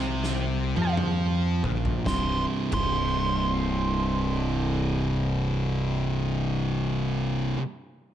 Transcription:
0, 0, Header, 1, 5, 480
1, 0, Start_track
1, 0, Tempo, 1088929
1, 909, Time_signature, 4, 2, 24, 8
1, 3589, End_track
2, 0, Start_track
2, 0, Title_t, "Lead electric guitar"
2, 0, Program_c, 0, 29
2, 0, Note_on_c, 0, 82, 97
2, 411, Note_off_c, 0, 82, 0
2, 912, Note_on_c, 0, 84, 92
2, 1075, Note_off_c, 0, 84, 0
2, 1207, Note_on_c, 0, 84, 87
2, 3166, Note_off_c, 0, 84, 0
2, 3589, End_track
3, 0, Start_track
3, 0, Title_t, "Distorted electric guitar"
3, 0, Program_c, 1, 30
3, 0, Note_on_c, 1, 48, 91
3, 331, Note_off_c, 1, 48, 0
3, 335, Note_on_c, 1, 53, 97
3, 713, Note_off_c, 1, 53, 0
3, 723, Note_on_c, 1, 46, 94
3, 899, Note_off_c, 1, 46, 0
3, 901, Note_on_c, 1, 36, 86
3, 911, Note_on_c, 1, 43, 89
3, 921, Note_on_c, 1, 48, 95
3, 1193, Note_off_c, 1, 36, 0
3, 1195, Note_on_c, 1, 36, 94
3, 1203, Note_off_c, 1, 43, 0
3, 1205, Note_on_c, 1, 43, 86
3, 1210, Note_off_c, 1, 48, 0
3, 1212, Note_on_c, 1, 48, 103
3, 3336, Note_off_c, 1, 36, 0
3, 3345, Note_off_c, 1, 43, 0
3, 3352, Note_off_c, 1, 48, 0
3, 3589, End_track
4, 0, Start_track
4, 0, Title_t, "Fingered electric bass"
4, 0, Program_c, 2, 33
4, 0, Note_on_c, 2, 36, 88
4, 322, Note_off_c, 2, 36, 0
4, 340, Note_on_c, 2, 41, 92
4, 707, Note_off_c, 2, 41, 0
4, 727, Note_on_c, 2, 34, 87
4, 898, Note_off_c, 2, 34, 0
4, 911, Note_on_c, 2, 24, 97
4, 1074, Note_off_c, 2, 24, 0
4, 1203, Note_on_c, 2, 24, 82
4, 3326, Note_off_c, 2, 24, 0
4, 3589, End_track
5, 0, Start_track
5, 0, Title_t, "Drums"
5, 104, Note_on_c, 9, 38, 49
5, 148, Note_off_c, 9, 38, 0
5, 337, Note_on_c, 9, 48, 63
5, 381, Note_off_c, 9, 48, 0
5, 429, Note_on_c, 9, 47, 88
5, 474, Note_off_c, 9, 47, 0
5, 722, Note_on_c, 9, 43, 86
5, 766, Note_off_c, 9, 43, 0
5, 816, Note_on_c, 9, 43, 80
5, 860, Note_off_c, 9, 43, 0
5, 909, Note_on_c, 9, 36, 102
5, 912, Note_on_c, 9, 38, 88
5, 953, Note_off_c, 9, 36, 0
5, 956, Note_off_c, 9, 38, 0
5, 1198, Note_on_c, 9, 49, 72
5, 1202, Note_on_c, 9, 36, 97
5, 1243, Note_off_c, 9, 49, 0
5, 1246, Note_off_c, 9, 36, 0
5, 3589, End_track
0, 0, End_of_file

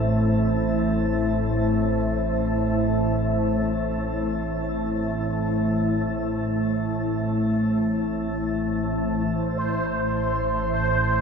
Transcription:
0, 0, Header, 1, 4, 480
1, 0, Start_track
1, 0, Key_signature, 0, "minor"
1, 0, Tempo, 500000
1, 10764, End_track
2, 0, Start_track
2, 0, Title_t, "Synth texture"
2, 0, Program_c, 0, 99
2, 8933, Note_on_c, 0, 72, 78
2, 10764, Note_off_c, 0, 72, 0
2, 10764, End_track
3, 0, Start_track
3, 0, Title_t, "Ambient pad"
3, 0, Program_c, 1, 92
3, 0, Note_on_c, 1, 57, 71
3, 0, Note_on_c, 1, 64, 71
3, 0, Note_on_c, 1, 72, 67
3, 0, Note_on_c, 1, 76, 67
3, 10764, Note_off_c, 1, 57, 0
3, 10764, Note_off_c, 1, 64, 0
3, 10764, Note_off_c, 1, 72, 0
3, 10764, Note_off_c, 1, 76, 0
3, 10764, End_track
4, 0, Start_track
4, 0, Title_t, "Synth drone"
4, 0, Program_c, 2, 95
4, 0, Note_on_c, 2, 33, 69
4, 0, Note_on_c, 2, 45, 67
4, 8911, Note_off_c, 2, 45, 0
4, 8915, Note_off_c, 2, 33, 0
4, 8923, Note_on_c, 2, 45, 77
4, 8926, Note_on_c, 2, 33, 75
4, 10764, Note_off_c, 2, 33, 0
4, 10764, Note_off_c, 2, 45, 0
4, 10764, End_track
0, 0, End_of_file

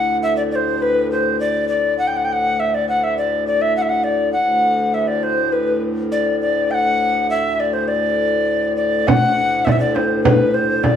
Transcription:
0, 0, Header, 1, 4, 480
1, 0, Start_track
1, 0, Tempo, 589971
1, 656, Time_signature, 2, 2, 24, 8
1, 8919, End_track
2, 0, Start_track
2, 0, Title_t, "Recorder"
2, 0, Program_c, 0, 74
2, 0, Note_on_c, 0, 78, 95
2, 146, Note_off_c, 0, 78, 0
2, 185, Note_on_c, 0, 76, 86
2, 292, Note_off_c, 0, 76, 0
2, 297, Note_on_c, 0, 74, 75
2, 346, Note_off_c, 0, 74, 0
2, 419, Note_on_c, 0, 74, 69
2, 451, Note_on_c, 0, 72, 75
2, 460, Note_off_c, 0, 74, 0
2, 667, Note_on_c, 0, 71, 81
2, 679, Note_off_c, 0, 72, 0
2, 902, Note_off_c, 0, 71, 0
2, 909, Note_on_c, 0, 72, 75
2, 1127, Note_off_c, 0, 72, 0
2, 1141, Note_on_c, 0, 74, 81
2, 1363, Note_off_c, 0, 74, 0
2, 1373, Note_on_c, 0, 74, 78
2, 1600, Note_off_c, 0, 74, 0
2, 1615, Note_on_c, 0, 78, 72
2, 1687, Note_on_c, 0, 79, 69
2, 1699, Note_off_c, 0, 78, 0
2, 1763, Note_on_c, 0, 78, 63
2, 1775, Note_off_c, 0, 79, 0
2, 1827, Note_on_c, 0, 79, 70
2, 1839, Note_off_c, 0, 78, 0
2, 1893, Note_on_c, 0, 78, 84
2, 1905, Note_off_c, 0, 79, 0
2, 2114, Note_on_c, 0, 76, 80
2, 2126, Note_off_c, 0, 78, 0
2, 2233, Note_on_c, 0, 74, 71
2, 2245, Note_off_c, 0, 76, 0
2, 2345, Note_off_c, 0, 74, 0
2, 2350, Note_on_c, 0, 78, 79
2, 2470, Note_on_c, 0, 76, 75
2, 2482, Note_off_c, 0, 78, 0
2, 2578, Note_off_c, 0, 76, 0
2, 2583, Note_on_c, 0, 74, 77
2, 2806, Note_off_c, 0, 74, 0
2, 2824, Note_on_c, 0, 74, 72
2, 2942, Note_on_c, 0, 76, 78
2, 2954, Note_off_c, 0, 74, 0
2, 3060, Note_off_c, 0, 76, 0
2, 3064, Note_on_c, 0, 78, 83
2, 3109, Note_on_c, 0, 76, 63
2, 3121, Note_off_c, 0, 78, 0
2, 3167, Note_on_c, 0, 78, 79
2, 3179, Note_off_c, 0, 76, 0
2, 3284, Note_on_c, 0, 74, 74
2, 3296, Note_off_c, 0, 78, 0
2, 3515, Note_off_c, 0, 74, 0
2, 3519, Note_on_c, 0, 78, 80
2, 4019, Note_on_c, 0, 76, 72
2, 4032, Note_off_c, 0, 78, 0
2, 4129, Note_on_c, 0, 74, 66
2, 4141, Note_off_c, 0, 76, 0
2, 4257, Note_on_c, 0, 72, 72
2, 4269, Note_off_c, 0, 74, 0
2, 4494, Note_on_c, 0, 71, 64
2, 4506, Note_off_c, 0, 72, 0
2, 4740, Note_off_c, 0, 71, 0
2, 4978, Note_on_c, 0, 74, 83
2, 5204, Note_off_c, 0, 74, 0
2, 5219, Note_on_c, 0, 74, 81
2, 5459, Note_on_c, 0, 79, 88
2, 5471, Note_off_c, 0, 74, 0
2, 5485, Note_on_c, 0, 78, 95
2, 5493, Note_off_c, 0, 79, 0
2, 5935, Note_off_c, 0, 78, 0
2, 5940, Note_on_c, 0, 76, 85
2, 6183, Note_on_c, 0, 74, 76
2, 6195, Note_off_c, 0, 76, 0
2, 6292, Note_on_c, 0, 72, 68
2, 6304, Note_off_c, 0, 74, 0
2, 6411, Note_on_c, 0, 74, 80
2, 6423, Note_off_c, 0, 72, 0
2, 7126, Note_off_c, 0, 74, 0
2, 7131, Note_on_c, 0, 74, 83
2, 7382, Note_on_c, 0, 78, 102
2, 7394, Note_off_c, 0, 74, 0
2, 7850, Note_on_c, 0, 76, 82
2, 7862, Note_off_c, 0, 78, 0
2, 7879, Note_on_c, 0, 74, 76
2, 7891, Note_off_c, 0, 76, 0
2, 7907, Note_on_c, 0, 76, 89
2, 7920, Note_off_c, 0, 74, 0
2, 7966, Note_off_c, 0, 76, 0
2, 7970, Note_on_c, 0, 74, 78
2, 8095, Note_on_c, 0, 72, 81
2, 8107, Note_off_c, 0, 74, 0
2, 8323, Note_off_c, 0, 72, 0
2, 8328, Note_on_c, 0, 71, 82
2, 8577, Note_on_c, 0, 72, 81
2, 8589, Note_off_c, 0, 71, 0
2, 8813, Note_on_c, 0, 74, 77
2, 8826, Note_off_c, 0, 72, 0
2, 8919, Note_off_c, 0, 74, 0
2, 8919, End_track
3, 0, Start_track
3, 0, Title_t, "Harmonium"
3, 0, Program_c, 1, 20
3, 0, Note_on_c, 1, 38, 58
3, 0, Note_on_c, 1, 45, 59
3, 3530, Note_off_c, 1, 38, 0
3, 3532, Note_off_c, 1, 45, 0
3, 3542, Note_on_c, 1, 38, 61
3, 3544, Note_on_c, 1, 45, 58
3, 7363, Note_off_c, 1, 38, 0
3, 7368, Note_off_c, 1, 45, 0
3, 7375, Note_on_c, 1, 38, 60
3, 7381, Note_on_c, 1, 45, 65
3, 8919, Note_off_c, 1, 38, 0
3, 8919, Note_off_c, 1, 45, 0
3, 8919, End_track
4, 0, Start_track
4, 0, Title_t, "Frame drum"
4, 7387, Note_on_c, 9, 64, 85
4, 7469, Note_off_c, 9, 64, 0
4, 7865, Note_on_c, 9, 64, 75
4, 7946, Note_off_c, 9, 64, 0
4, 8102, Note_on_c, 9, 64, 60
4, 8184, Note_off_c, 9, 64, 0
4, 8341, Note_on_c, 9, 64, 89
4, 8422, Note_off_c, 9, 64, 0
4, 8817, Note_on_c, 9, 64, 70
4, 8898, Note_off_c, 9, 64, 0
4, 8919, End_track
0, 0, End_of_file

